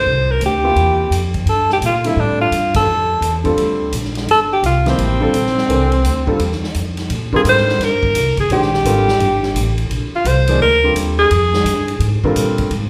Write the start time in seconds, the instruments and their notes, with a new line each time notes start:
Already playing: alto saxophone C5
0.06 upright bass C2
0.31 alto saxophone A#4
0.40 upright bass D2, hi-hat pedal, ride
0.46 alto saxophone G4
0.64 grand piano C3 A#3 E4 F4 G4
0.76 upright bass E2, ride
1.10 upright bass F2, hi-hat pedal, ride
1.34 kick, ride
1.45 upright bass G2, alto saxophone A4, ride
1.70 alto saxophone G4, snare
1.81 upright bass A#2, hi-hat pedal, ride
1.86 alto saxophone F4
2.04 grand piano D3 G3 C4 F4 A4, alto saxophone E4, ride
2.16 upright bass A2, alto saxophone D4
2.42 alto saxophone F4
2.51 upright bass G2, hi-hat pedal, ride
2.74 alto saxophone A4, kick, ride
2.86 upright bass F2
3.21 upright bass E2, hi-hat pedal, ride
3.44 grand piano D3 G3 C4 F4 A4, kick, ride
3.56 upright bass D2, ride
3.92 upright bass A#1, hi-hat pedal, ride
4.05 snare
4.15 snare, ride
4.27 upright bass G1, ride
4.31 alto saxophone A4
4.53 alto saxophone G4
4.62 upright bass C2, alto saxophone F4, hi-hat pedal, ride
4.86 grand piano C3 F3 A#3 E4 G4, alto saxophone C4, snare, ride
4.98 upright bass A1, ride
5.20 grand piano D3 G3 C4 F4 A4
5.33 upright bass A#1, hi-hat pedal, ride
5.46 snare
5.58 snare
5.68 upright bass C2, grand piano E3 A3 D4 G4 A#4, ride
5.92 ride
6.03 upright bass D2, hi-hat pedal, ride
6.27 grand piano D3 G3 C4 F4 A4, kick
6.39 upright bass E2, ride
6.52 snare
6.64 snare
6.75 upright bass F2, hi-hat pedal, ride
6.97 snare, ride
7.10 upright bass A#2, ride
7.33 grand piano D3 G3 C4 F4 A#4, alto saxophone G#4, kick
7.44 upright bass G#2, hi-hat pedal, ride
7.49 alto saxophone C5
7.57 snare
7.69 snare
7.79 upright bass G2, snare, ride
7.84 alto saxophone A#4
8.03 kick
8.14 upright bass C2, hi-hat pedal, ride
8.37 alto saxophone G#4, muted upright bass stroke, kick, ride
8.48 upright bass A#1, grand piano D#3 G#3 D4 G4 C5, ride
8.53 alto saxophone G4
8.62 snare
8.74 snare
8.85 upright bass G#1, grand piano D3 G3 C4 F4 A#4, hi-hat pedal, ride
9.08 snare
9.19 upright bass G1, ride
9.43 snare
9.54 upright bass A1, hi-hat pedal, ride
9.78 ride
9.90 upright bass A#1, ride
10.13 alto saxophone F4, muted upright bass stroke
10.25 upright bass C2, alto saxophone C5, hi-hat pedal, ride
10.47 grand piano F3 A#3 D#4 G#4 D5, ride
10.59 upright bass D2, alto saxophone A#4
10.84 grand piano D3 G3 C4 F4 G4
10.95 upright bass D#2, hi-hat pedal, ride
11.19 alto saxophone G#4
11.31 upright bass F2, ride
11.53 snare
11.65 upright bass G2, hi-hat pedal, ride
11.88 ride
11.99 upright bass G#2, ride
12.23 grand piano D3 G3 C4 F4 A#4, muted upright bass stroke, kick
12.36 upright bass A#2, hi-hat pedal, ride
12.58 kick, ride
12.70 upright bass G#2, ride